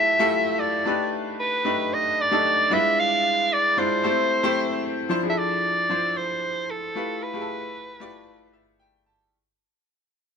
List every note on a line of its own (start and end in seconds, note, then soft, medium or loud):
0.00 0.19 A3 medium
0.00 0.19 E4 medium
0.00 0.19 F4 medium
0.00 0.20 G4 medium
0.00 0.88 G#4 medium
0.00 0.21 A4 medium
0.00 0.87 B4 medium
0.00 0.61 E5 loud
0.19 0.69 A3 loud
0.19 0.70 E4 medium
0.19 0.70 F4 medium
0.19 0.70 G4 medium
0.19 0.70 A4 loud
0.59 1.12 D5 medium
0.85 1.46 A3 medium
0.85 1.46 D4 medium
0.85 1.46 D#4 medium
0.85 1.46 G4 medium
0.85 1.46 B4 medium
1.40 1.95 B4 medium
1.64 2.15 A3 medium
1.64 2.15 D4 medium
1.64 2.15 D#4 medium
1.64 2.15 G4 medium
1.64 2.15 B4 medium
1.94 2.22 D#5 loud
2.21 2.75 D5 loud
2.31 2.71 A3 medium
2.31 2.69 D4 medium
2.31 2.71 D#4 medium
2.31 2.72 G4 medium
2.31 2.72 A4 medium
2.70 2.77 G3 medium
2.70 3.56 D4 medium
2.70 3.56 E4 medium
2.70 3.56 F4 medium
2.70 3.56 B4 medium
2.70 3.02 E5 loud
2.77 3.59 G#3 medium
3.00 3.55 F5 loud
3.53 3.80 D5 loud
3.77 4.03 G#3 medium
3.77 4.04 D4 medium
3.77 4.03 E4 medium
3.77 4.04 F4 medium
3.77 4.84 C5 loud
3.77 4.04 D5 medium
4.04 4.35 A3 medium
4.04 4.35 C4 medium
4.04 4.36 E4 medium
4.04 4.36 G4 medium
4.04 4.36 C5 medium
4.43 4.93 A3 medium
4.43 4.93 C4 medium
4.43 4.93 E4 medium
4.43 4.93 G4 medium
4.43 4.93 C5 loud
5.09 5.19 F3 medium
5.09 5.19 D4 medium
5.09 5.20 E4 medium
5.09 5.20 C5 loud
5.23 5.73 F3 medium
5.23 5.73 D4 medium
5.23 5.73 E4 medium
5.23 5.30 G#4 medium
5.30 5.76 A4 medium
5.30 5.40 E5 medium
5.38 6.19 D5 loud
5.89 6.69 F3 medium
5.89 6.69 D4 medium
5.89 6.69 E4 medium
5.89 6.69 C5 medium
6.17 6.72 C5 loud
6.70 7.24 A4 medium
6.95 7.27 A3 medium
6.95 7.27 E4 medium
6.95 7.27 F4 medium
6.95 7.27 G4 medium
6.95 7.27 B4 medium
7.23 8.81 B4 loud
7.33 7.84 A3 medium
7.33 7.84 E4 medium
7.33 7.84 F4 medium
7.33 7.84 G4 medium
7.33 7.41 G#4 medium
7.41 7.88 A4 medium
8.00 8.80 A3 medium
8.00 8.80 E4 medium
8.00 8.81 F4 medium
8.00 8.81 G4 medium
8.00 8.81 D5 loud
8.53 8.78 E5 medium
8.80 9.04 G5 medium
9.06 9.31 A5 medium